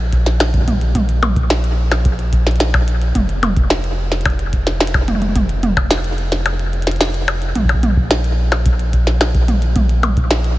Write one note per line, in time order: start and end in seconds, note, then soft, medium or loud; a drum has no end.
0.00 3.12 A#1 medium
0.12 kick medium
0.12 closed hi-hat medium
0.26 snare medium
0.26 closed hi-hat soft
0.40 snare loud
0.40 closed hi-hat medium
0.40 percussion blips soft
0.54 kick loud
0.54 closed hi-hat soft
0.57 kick medium
0.61 kick medium
0.64 kick medium
0.67 kick soft
0.67 closed hi-hat medium
0.67 mid tom medium
0.71 kick soft
0.74 kick soft
0.78 kick soft
0.78 closed hi-hat soft
0.95 kick medium
0.95 closed hi-hat medium
0.95 mid tom medium
1.09 closed hi-hat soft
1.23 closed hi-hat medium
1.23 mid tom loud
1.23 percussion blips medium
1.36 kick loud
1.36 closed hi-hat soft
1.50 snare loud
1.50 closed hi-hat medium
1.64 closed hi-hat soft
1.92 snare medium
1.92 closed hi-hat soft
1.92 percussion blips medium
2.05 kick loud
2.05 closed hi-hat medium
2.19 closed hi-hat soft
2.33 kick medium
2.33 closed hi-hat medium
2.47 snare medium
2.47 closed hi-hat soft
2.51 closed hi-hat soft
2.56 closed hi-hat soft
2.60 snare loud
2.60 closed hi-hat medium
2.74 kick loud
2.74 closed hi-hat soft
2.74 percussion blips medium
2.88 closed hi-hat medium
3.02 closed hi-hat soft
3.15 7.53 F1 medium
3.15 kick medium
3.15 closed hi-hat medium
3.15 mid tom medium
3.29 closed hi-hat soft
3.43 closed hi-hat medium
3.43 mid tom medium
3.43 percussion blips medium
3.56 kick loud
3.56 closed hi-hat soft
3.70 snare loud
3.84 closed hi-hat soft
4.12 snare medium
4.12 closed hi-hat soft
4.21 closed hi-hat soft
4.25 kick loud
4.25 closed hi-hat medium
4.25 percussion blips medium
4.30 closed hi-hat soft
4.39 closed hi-hat soft
4.53 kick medium
4.53 closed hi-hat medium
4.67 snare medium
4.67 closed hi-hat soft
4.80 snare loud
4.87 closed hi-hat medium
4.94 kick loud
4.94 closed hi-hat soft
4.94 percussion blips medium
5.08 closed hi-hat medium
5.08 mid tom medium
5.15 mid tom medium
5.22 closed hi-hat soft
5.22 mid tom medium
5.29 mid tom soft
5.35 kick medium
5.35 closed hi-hat medium
5.35 mid tom medium
5.49 closed hi-hat soft
5.63 closed hi-hat medium
5.63 mid tom loud
5.77 kick loud
5.77 closed hi-hat soft
5.77 percussion blips medium
5.91 snare loud
5.91 closed hi-hat loud
6.04 closed hi-hat soft
6.18 closed hi-hat soft
6.32 snare medium
6.46 closed hi-hat medium
6.46 percussion blips medium
6.59 closed hi-hat soft
6.73 closed hi-hat soft
6.82 closed hi-hat soft
6.87 snare medium
6.87 closed hi-hat soft
6.91 closed hi-hat medium
6.96 closed hi-hat soft
7.01 snare loud
7.01 closed hi-hat medium
7.05 closed hi-hat soft
7.14 closed hi-hat soft
7.28 closed hi-hat medium
7.28 percussion blips medium
7.42 closed hi-hat soft
7.55 10.59 A#1 medium
7.55 kick soft
7.55 closed hi-hat medium
7.55 mid tom medium
7.65 kick medium
7.69 closed hi-hat soft
7.69 percussion blips medium
7.74 kick medium
7.83 closed hi-hat medium
7.83 mid tom medium
7.97 kick loud
8.11 snare loud
8.11 closed hi-hat medium
8.24 closed hi-hat soft
8.52 snare medium
8.52 closed hi-hat soft
8.52 percussion blips medium
8.66 kick loud
8.66 closed hi-hat loud
8.79 closed hi-hat soft
8.93 kick medium
8.93 closed hi-hat medium
9.07 snare medium
9.07 closed hi-hat soft
9.21 snare loud
9.21 closed hi-hat loud
9.21 percussion blips medium
9.34 kick loud
9.34 closed hi-hat soft
9.48 closed hi-hat medium
9.48 mid tom medium
9.62 closed hi-hat soft
9.76 kick medium
9.76 closed hi-hat loud
9.76 mid tom medium
9.89 closed hi-hat soft
10.03 closed hi-hat medium
10.03 mid tom medium
10.03 percussion blips medium
10.17 kick loud
10.17 closed hi-hat soft
10.31 snare loud
10.31 closed hi-hat loud
10.44 closed hi-hat soft